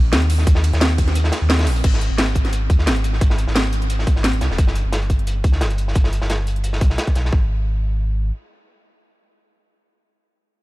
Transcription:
Already playing: A#1
0.12 D#2, snare, closed hi-hat
0.22 closed hi-hat
0.30 closed hi-hat, open hi-hat, ride
0.38 snare
0.47 D#2, kick, closed hi-hat
0.55 snare
0.64 closed hi-hat, ride
0.73 D#2, snare, closed hi-hat
0.81 snare, closed hi-hat
0.98 kick, closed hi-hat, ride
1.07 snare, closed hi-hat
1.15 closed hi-hat
1.24 snare
1.32 snare, closed hi-hat, ride
1.42 D#2
1.50 snare, closed hi-hat
1.59 snare, closed hi-hat
1.62 snare, closed hi-hat
1.67 A#1, open hi-hat, ride
1.76 closed hi-hat
1.84 G#1, kick, closed hi-hat, crash
1.94 snare
2.01 closed hi-hat
2.10 G#1
2.18 snare, closed hi-hat
2.27 closed hi-hat
2.35 kick, closed hi-hat
2.45 snare, closed hi-hat
2.53 closed hi-hat
2.70 D#2, kick, closed hi-hat
2.79 snare
2.87 G#1, snare, closed hi-hat
2.96 closed hi-hat
3.04 closed hi-hat
3.13 snare
3.21 G#1, kick, closed hi-hat
3.30 snare
3.38 closed hi-hat
3.47 G#1, snare
3.55 snare, closed hi-hat
3.72 closed hi-hat
3.82 closed hi-hat
3.90 closed hi-hat
3.99 snare
4.07 kick, closed hi-hat
4.16 G#1, snare
4.24 snare, closed hi-hat
4.33 G#1, closed hi-hat
4.41 C2, snare, closed hi-hat
4.50 D#1, snare
4.58 G1, kick, closed hi-hat
4.67 snare
4.75 closed hi-hat
4.85 G1
4.92 snare, closed hi-hat
5.02 closed hi-hat
5.10 kick, closed hi-hat
5.19 closed hi-hat
5.27 closed hi-hat
5.44 D2, kick, closed hi-hat
5.52 snare
5.61 G1, snare, closed hi-hat
5.70 closed hi-hat
5.78 closed hi-hat
5.88 snare
5.95 G1, kick, closed hi-hat
6.04 snare
6.13 closed hi-hat
6.22 G1, snare
6.29 snare, closed hi-hat
6.47 closed hi-hat
6.56 closed hi-hat
6.64 closed hi-hat
6.73 snare
6.81 B1, kick, closed hi-hat
6.90 B1, snare
6.98 snare, closed hi-hat
7.07 kick, closed hi-hat
7.15 B1, snare, closed hi-hat
7.25 snare
7.33 G#1, kick

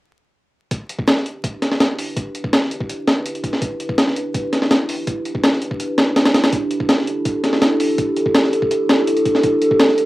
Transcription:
0.71 D4 E4 G4 B4, kick, closed hi-hat
0.89 closed hi-hat
0.98 kick
1.07 snare, closed hi-hat
1.17 snare
1.26 closed hi-hat
1.44 kick, closed hi-hat
1.62 snare, closed hi-hat
1.72 snare
1.80 snare, closed hi-hat
1.99 open hi-hat
2.17 kick, closed hi-hat
2.35 closed hi-hat
2.44 kick
2.53 snare, closed hi-hat
2.62 snare
2.71 closed hi-hat
2.80 kick
2.89 closed hi-hat
3.07 snare, closed hi-hat
3.26 closed hi-hat
3.35 closed hi-hat
3.44 kick, closed hi-hat
3.53 snare
3.62 kick, closed hi-hat
3.80 closed hi-hat
3.89 kick
3.98 snare, closed hi-hat
4.08 snare
4.17 closed hi-hat
4.35 kick, closed hi-hat
4.53 snare, closed hi-hat
4.62 snare
4.71 snare, closed hi-hat
4.89 open hi-hat
5.07 kick, closed hi-hat
5.25 closed hi-hat
5.35 kick
5.43 snare, closed hi-hat
5.53 snare
5.62 closed hi-hat
5.71 kick
5.80 closed hi-hat
5.98 snare, closed hi-hat
6.16 snare, closed hi-hat
6.25 snare, closed hi-hat
6.34 snare, closed hi-hat
6.44 snare, closed hi-hat
6.52 A4, kick, closed hi-hat
6.71 closed hi-hat
6.80 kick
6.89 snare, closed hi-hat
6.98 snare
7.07 closed hi-hat
7.25 kick, closed hi-hat
7.44 snare, closed hi-hat
7.53 snare
7.62 snare, closed hi-hat
7.80 open hi-hat
7.98 kick, closed hi-hat
8.16 closed hi-hat
8.26 kick
8.34 snare, closed hi-hat
8.44 snare
8.53 closed hi-hat
8.62 kick
8.71 closed hi-hat
8.89 snare, closed hi-hat
9.07 closed hi-hat
9.17 closed hi-hat
9.25 kick, closed hi-hat
9.35 snare
9.43 kick, closed hi-hat
9.62 closed hi-hat
9.71 kick
9.80 snare, closed hi-hat
9.89 snare
9.98 closed hi-hat

